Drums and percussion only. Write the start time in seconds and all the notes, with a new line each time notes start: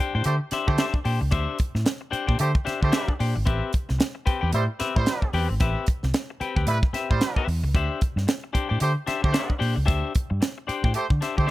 0.24 closed hi-hat
0.51 snare, closed hi-hat
0.68 kick
0.78 snare, closed hi-hat
0.94 kick
1.05 open hi-hat
1.31 kick, closed hi-hat
1.59 kick, closed hi-hat
1.75 snare
1.86 snare, closed hi-hat
2.13 closed hi-hat
2.29 kick
2.39 closed hi-hat
2.55 kick
2.67 snare, closed hi-hat
2.83 kick
2.92 snare, closed hi-hat
3.08 kick
3.20 open hi-hat
3.47 kick, closed hi-hat
3.73 kick, closed hi-hat
3.89 snare
4.00 snare, closed hi-hat
4.27 kick, closed hi-hat
4.53 closed hi-hat
4.80 snare, closed hi-hat
4.96 kick
5.06 snare, closed hi-hat
5.22 kick
5.33 open hi-hat
5.60 kick, closed hi-hat
5.87 kick, closed hi-hat
6.03 snare
6.14 snare, closed hi-hat
6.41 closed hi-hat
6.57 kick
6.67 closed hi-hat
6.83 kick
6.94 snare, closed hi-hat
7.11 kick
7.21 snare, closed hi-hat
7.36 kick
7.48 open hi-hat
7.75 kick, closed hi-hat
8.01 kick, closed hi-hat
8.18 snare
8.28 snare, closed hi-hat
8.55 kick, closed hi-hat
8.80 closed hi-hat
9.07 snare, closed hi-hat
9.24 kick
9.34 snare, closed hi-hat
9.50 kick
9.62 open hi-hat
9.88 kick, closed hi-hat
10.15 kick, closed hi-hat
10.42 snare, closed hi-hat
10.69 closed hi-hat
10.84 kick
10.94 closed hi-hat
11.10 kick
11.22 snare, closed hi-hat
11.38 kick